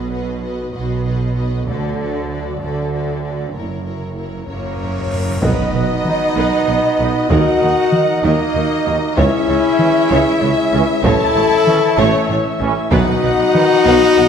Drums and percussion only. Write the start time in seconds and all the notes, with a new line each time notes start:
1.67 taiko
5.43 taiko
6.05 taiko mid
7.30 taiko
7.93 taiko mid
9.17 taiko
9.79 taiko mid
11.04 taiko
11.67 taiko mid
12.92 taiko
13.55 taiko mid